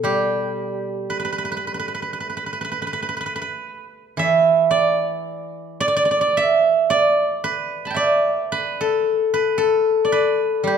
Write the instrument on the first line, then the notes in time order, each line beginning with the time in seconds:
guzheng
Already playing: B2 A4
0.04 G3 G4
1.10 B4
1.20 B4
1.25 B4
1.32 B4
1.38 B4
1.45 B4
1.52 B4
1.57 B4
1.67 B4
1.74 B4
1.79 B4
1.88 B4
1.95 B4
2.02 B4
2.13 B4
2.20 B4
2.30 B4
2.37 B4
2.46 B4
2.53 B4
2.61 B4
2.72 B4
2.82 B4
2.87 B4
2.93 B4
3.02 B4
3.09 B4
3.17 B4
3.21 B4
3.26 B4
3.36 B4
3.42 B4
4.17 E3 E5
4.71 D5
5.80 D5
5.88 D5
5.96 D5
6.05 D5
6.11 D5
6.21 D5
6.37 E5
6.90 D5
7.44 B4
7.85 A5 B5
7.90 E5 G5
7.96 D5
8.52 B4
8.81 A4
9.34 B4
9.58 A4
10.05 D5
10.12 B4
10.64 G3 G4